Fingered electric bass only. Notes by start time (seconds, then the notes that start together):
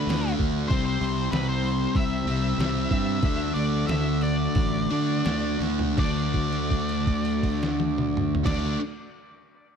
0.07 D2
0.39 D2
0.69 C2
1.01 C2
1.32 C2
1.95 C2
2.25 C2
2.58 C2
2.91 G2
3.23 D2
3.56 D2
3.88 D2
4.55 A1
4.91 D3
5.26 D2
5.60 D2
5.97 D2
8.45 D2